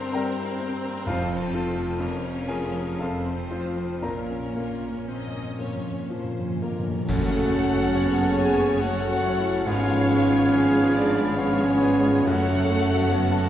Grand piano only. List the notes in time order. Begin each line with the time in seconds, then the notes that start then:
Already playing: G2 C4 D4 C5 D5 C6 D6
0.13 G3 A#4 G5 A#5
0.61 C4
1.07 F2 F4 C5 F5
1.54 F4 A4
2.00 F2
2.48 F4 G#4 A#4 G#5
2.99 F2 A4 F5 A5
3.51 F4 C5
4.02 A#2 A#4 F5 A#5
4.56 A#3
5.08 C4
5.59 A#3
6.10 F3
6.62 A#3
7.09 F#2
7.30 C#3
7.52 A3
7.74 F#4
7.95 C#5
8.17 A4
8.38 F#5
8.59 C#6
8.81 F#5
9.02 A4
9.24 C#5
9.45 F#4
9.66 G#2
9.87 F3
10.09 G#3
10.30 F4
10.52 B4
10.73 G#4
10.93 F5
11.16 B5
11.37 F5
11.60 G#4
11.82 B4
12.05 F4
12.27 F#2
12.50 C#3
12.71 A3
12.92 F#4
13.12 C#5
13.32 A4